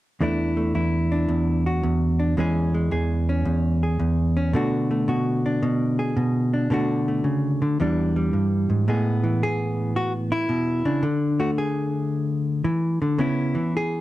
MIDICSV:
0, 0, Header, 1, 2, 480
1, 0, Start_track
1, 0, Tempo, 541028
1, 179, Time_signature, 4, 2, 24, 8
1, 12428, End_track
2, 0, Start_track
2, 0, Title_t, "Hollow-body jazz guitar"
2, 0, Program_c, 0, 26
2, 182, Note_on_c, 0, 40, 59
2, 189, Note_on_c, 0, 52, 48
2, 194, Note_on_c, 0, 57, 50
2, 199, Note_on_c, 0, 62, 47
2, 207, Note_on_c, 0, 64, 54
2, 501, Note_off_c, 0, 57, 0
2, 505, Note_on_c, 0, 57, 42
2, 659, Note_off_c, 0, 40, 0
2, 663, Note_off_c, 0, 64, 0
2, 663, Note_on_c, 0, 40, 54
2, 667, Note_on_c, 0, 64, 51
2, 980, Note_off_c, 0, 62, 0
2, 991, Note_on_c, 0, 62, 48
2, 1137, Note_off_c, 0, 40, 0
2, 1140, Note_on_c, 0, 40, 63
2, 1469, Note_off_c, 0, 64, 0
2, 1476, Note_on_c, 0, 66, 52
2, 1616, Note_off_c, 0, 40, 0
2, 1627, Note_on_c, 0, 40, 67
2, 1936, Note_off_c, 0, 62, 0
2, 1947, Note_on_c, 0, 62, 47
2, 2084, Note_off_c, 0, 62, 0
2, 2088, Note_off_c, 0, 52, 0
2, 2088, Note_off_c, 0, 66, 0
2, 2092, Note_off_c, 0, 40, 0
2, 2103, Note_on_c, 0, 40, 58
2, 2108, Note_on_c, 0, 52, 51
2, 2110, Note_off_c, 0, 57, 0
2, 2113, Note_on_c, 0, 56, 55
2, 2118, Note_on_c, 0, 61, 49
2, 2129, Note_on_c, 0, 68, 63
2, 2424, Note_off_c, 0, 56, 0
2, 2435, Note_on_c, 0, 56, 42
2, 2574, Note_off_c, 0, 40, 0
2, 2580, Note_off_c, 0, 68, 0
2, 2585, Note_on_c, 0, 40, 61
2, 2591, Note_on_c, 0, 68, 55
2, 2909, Note_off_c, 0, 61, 0
2, 2920, Note_on_c, 0, 61, 49
2, 3053, Note_off_c, 0, 40, 0
2, 3064, Note_on_c, 0, 40, 64
2, 3388, Note_off_c, 0, 68, 0
2, 3399, Note_on_c, 0, 68, 47
2, 3533, Note_off_c, 0, 40, 0
2, 3544, Note_on_c, 0, 40, 57
2, 3863, Note_off_c, 0, 61, 0
2, 3874, Note_on_c, 0, 61, 50
2, 4008, Note_off_c, 0, 52, 0
2, 4008, Note_off_c, 0, 61, 0
2, 4009, Note_off_c, 0, 56, 0
2, 4011, Note_off_c, 0, 68, 0
2, 4022, Note_on_c, 0, 47, 64
2, 4024, Note_off_c, 0, 40, 0
2, 4031, Note_on_c, 0, 50, 48
2, 4034, Note_on_c, 0, 57, 49
2, 4043, Note_on_c, 0, 62, 50
2, 4048, Note_on_c, 0, 66, 55
2, 4343, Note_off_c, 0, 57, 0
2, 4354, Note_on_c, 0, 57, 42
2, 4496, Note_off_c, 0, 47, 0
2, 4504, Note_off_c, 0, 66, 0
2, 4507, Note_on_c, 0, 47, 64
2, 4515, Note_on_c, 0, 66, 50
2, 4838, Note_off_c, 0, 62, 0
2, 4842, Note_on_c, 0, 62, 47
2, 4980, Note_off_c, 0, 47, 0
2, 4991, Note_on_c, 0, 47, 70
2, 5311, Note_off_c, 0, 66, 0
2, 5314, Note_on_c, 0, 68, 46
2, 5459, Note_off_c, 0, 47, 0
2, 5470, Note_on_c, 0, 47, 67
2, 5787, Note_off_c, 0, 62, 0
2, 5798, Note_on_c, 0, 62, 48
2, 5929, Note_off_c, 0, 47, 0
2, 5929, Note_off_c, 0, 57, 0
2, 5929, Note_off_c, 0, 68, 0
2, 5931, Note_off_c, 0, 62, 0
2, 5944, Note_off_c, 0, 50, 0
2, 5946, Note_on_c, 0, 47, 57
2, 5955, Note_on_c, 0, 50, 52
2, 5960, Note_on_c, 0, 57, 58
2, 5964, Note_on_c, 0, 62, 49
2, 5976, Note_on_c, 0, 66, 62
2, 6271, Note_off_c, 0, 57, 0
2, 6282, Note_on_c, 0, 57, 43
2, 6421, Note_off_c, 0, 47, 0
2, 6424, Note_on_c, 0, 49, 47
2, 6748, Note_off_c, 0, 50, 0
2, 6750, Note_off_c, 0, 49, 0
2, 6759, Note_on_c, 0, 50, 57
2, 6893, Note_off_c, 0, 57, 0
2, 6896, Note_off_c, 0, 62, 0
2, 6902, Note_off_c, 0, 66, 0
2, 6910, Note_off_c, 0, 50, 0
2, 6917, Note_on_c, 0, 40, 65
2, 6923, Note_on_c, 0, 52, 46
2, 6930, Note_on_c, 0, 55, 54
2, 6936, Note_on_c, 0, 62, 57
2, 7232, Note_off_c, 0, 55, 0
2, 7242, Note_on_c, 0, 55, 50
2, 7388, Note_off_c, 0, 40, 0
2, 7391, Note_on_c, 0, 43, 53
2, 7712, Note_off_c, 0, 43, 0
2, 7716, Note_on_c, 0, 44, 47
2, 7854, Note_off_c, 0, 52, 0
2, 7862, Note_off_c, 0, 62, 0
2, 7868, Note_off_c, 0, 44, 0
2, 7871, Note_off_c, 0, 55, 0
2, 7877, Note_on_c, 0, 45, 60
2, 7882, Note_on_c, 0, 56, 47
2, 7889, Note_on_c, 0, 59, 43
2, 7893, Note_on_c, 0, 68, 45
2, 8194, Note_on_c, 0, 52, 46
2, 8365, Note_off_c, 0, 68, 0
2, 8369, Note_on_c, 0, 68, 97
2, 8835, Note_off_c, 0, 68, 0
2, 8839, Note_on_c, 0, 66, 84
2, 8981, Note_off_c, 0, 66, 0
2, 9154, Note_on_c, 0, 64, 90
2, 9303, Note_off_c, 0, 45, 0
2, 9307, Note_on_c, 0, 47, 56
2, 9625, Note_off_c, 0, 47, 0
2, 9626, Note_off_c, 0, 59, 0
2, 9628, Note_on_c, 0, 49, 52
2, 9630, Note_on_c, 0, 62, 64
2, 9767, Note_off_c, 0, 52, 0
2, 9783, Note_on_c, 0, 50, 68
2, 9784, Note_off_c, 0, 49, 0
2, 9786, Note_off_c, 0, 64, 0
2, 9810, Note_off_c, 0, 56, 0
2, 10111, Note_on_c, 0, 57, 54
2, 10113, Note_on_c, 0, 66, 62
2, 10202, Note_off_c, 0, 66, 0
2, 10276, Note_on_c, 0, 68, 75
2, 10586, Note_off_c, 0, 62, 0
2, 11215, Note_off_c, 0, 50, 0
2, 11218, Note_on_c, 0, 52, 64
2, 11544, Note_off_c, 0, 52, 0
2, 11548, Note_on_c, 0, 50, 52
2, 11684, Note_off_c, 0, 57, 0
2, 11697, Note_on_c, 0, 49, 67
2, 11702, Note_off_c, 0, 50, 0
2, 11702, Note_on_c, 0, 59, 49
2, 11707, Note_off_c, 0, 68, 0
2, 11710, Note_on_c, 0, 61, 50
2, 11717, Note_on_c, 0, 64, 52
2, 12020, Note_on_c, 0, 52, 49
2, 12023, Note_off_c, 0, 49, 0
2, 12210, Note_off_c, 0, 64, 0
2, 12214, Note_on_c, 0, 68, 83
2, 12428, Note_off_c, 0, 52, 0
2, 12428, Note_off_c, 0, 59, 0
2, 12428, Note_off_c, 0, 61, 0
2, 12428, Note_off_c, 0, 68, 0
2, 12428, End_track
0, 0, End_of_file